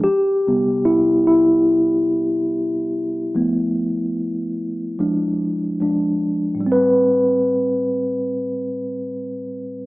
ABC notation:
X:1
M:4/4
L:1/8
Q:"Swing 16ths" 1/4=73
K:Am
V:1 name="Tine electric piano"
G2 E E4- E- | E6 z2 | [A,,G,CB]8 |]
V:2 name="Tine electric piano" clef=bass
z [C,G,B,]3 z4 | [F,A,B,]4 [F,_A,D]2 [F,A,D] z | z8 |]